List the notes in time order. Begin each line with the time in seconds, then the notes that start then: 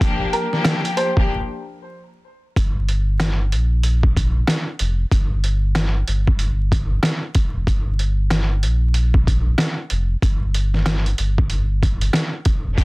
0.00 F3 A#3 D4 G4, kick, closed hi-hat
0.33 A#4, closed hi-hat
0.51 F3 A#3 D4 G4, snare
0.64 cross-stick, snare, closed hi-hat
0.85 closed hi-hat
0.97 C5, closed hi-hat
1.16 F3 A#3 D4 G4, kick
2.56 G1, kick, closed hi-hat
2.89 closed hi-hat
3.20 cross-stick, snare, closed hi-hat
3.52 A#1, closed hi-hat
3.83 closed hi-hat
4.03 kick
4.16 kick, closed hi-hat
4.47 cross-stick, snare, closed hi-hat
4.79 F1, closed hi-hat
5.12 G1, kick, closed hi-hat
5.44 closed hi-hat
5.75 cross-stick, snare, closed hi-hat
6.07 G1, closed hi-hat
6.27 kick
6.39 closed hi-hat
6.72 kick, closed hi-hat
7.03 cross-stick, snare, closed hi-hat
7.35 kick, closed hi-hat
7.55 F1
7.67 G1, kick, closed hi-hat
7.99 closed hi-hat
8.30 cross-stick, snare, closed hi-hat
8.63 A#1, closed hi-hat
8.94 closed hi-hat
9.14 kick
9.27 kick, closed hi-hat
9.58 cross-stick, snare, closed hi-hat
9.90 F1, closed hi-hat
10.22 G1, kick, closed hi-hat
10.54 closed hi-hat
10.74 snare
10.86 cross-stick, snare, closed hi-hat
11.06 closed hi-hat
11.18 G1, closed hi-hat
11.38 kick
11.50 closed hi-hat
11.83 kick, closed hi-hat
12.01 closed hi-hat
12.13 cross-stick, snare, closed hi-hat
12.45 kick, closed hi-hat
12.66 F1
12.75 G1 F3 A#3 D4 G4, kick, closed hi-hat